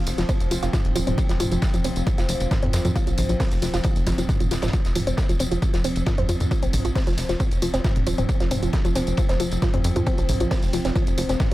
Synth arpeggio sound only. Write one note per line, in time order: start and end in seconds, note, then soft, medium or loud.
0.18 0.26 F3 medium
0.29 0.32 C4 medium
0.51 0.57 F3 medium
0.63 0.68 F4 medium
0.73 0.82 F3 medium
0.95 1.04 F3 medium
1.07 1.10 C4 medium
1.29 1.35 F3 medium
1.40 1.46 F4 medium
1.51 1.59 F3 medium
1.74 1.82 F3 medium
1.84 1.88 C4 medium
2.07 2.12 F3 medium
2.18 2.23 F4 medium
2.29 2.37 F3 medium
2.51 2.60 F3 medium
2.63 2.66 C4 medium
2.85 2.90 F3 medium
2.95 3.01 F4 medium
3.07 3.15 F3 medium
3.29 3.37 F3 medium
3.40 3.43 C4 medium
3.62 3.68 F3 medium
3.74 3.79 F4 medium
3.84 3.93 F3 medium
4.07 4.10 F3 medium
4.18 4.26 F3 medium
4.40 4.46 F3 medium
4.51 4.57 F3 medium
4.63 4.68 F3 loud
4.73 4.82 F3 medium
4.96 5.04 F3 medium
5.07 5.10 C4 medium
5.29 5.35 F3 medium
5.40 5.46 C4 medium
5.51 5.59 F3 medium
5.74 5.82 F3 medium
5.84 5.88 C4 medium
6.07 6.12 F3 medium
6.18 6.23 C4 medium
6.29 6.37 F3 medium
6.51 6.60 F3 medium
6.62 6.66 C4 medium
6.85 6.90 F3 medium
6.95 7.01 C4 medium
7.07 7.15 F3 medium
7.29 7.37 F3 medium
7.40 7.43 C4 medium
7.62 7.68 F3 medium
7.74 7.79 C4 medium
7.84 7.93 F3 medium
8.07 8.15 F3 medium
8.18 8.21 C4 medium
8.40 8.46 F3 medium
8.51 8.57 C4 medium
8.63 8.71 F3 medium
8.85 8.93 F3 medium
8.96 8.99 C4 medium
9.18 9.23 F3 medium
9.29 9.35 C4 medium
9.40 9.49 F3 medium
9.62 9.71 F3 medium
9.74 9.77 C4 medium
9.96 10.01 F3 medium
10.07 10.12 C4 medium
10.18 10.26 F3 medium
10.40 10.48 F3 medium
10.51 10.55 C4 medium
10.73 10.79 F3 medium
10.85 10.90 C4 medium
10.96 11.04 F3 medium
11.18 11.26 F3 medium
11.29 11.32 C4 medium